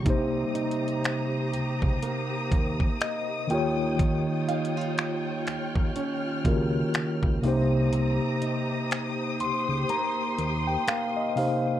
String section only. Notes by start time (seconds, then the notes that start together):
0.06 G4 C5 A#5 D#6
3.50 F4 C#5 G5
5.47 F6
7.43 G4 C5 A#5 D#6
9.40 C6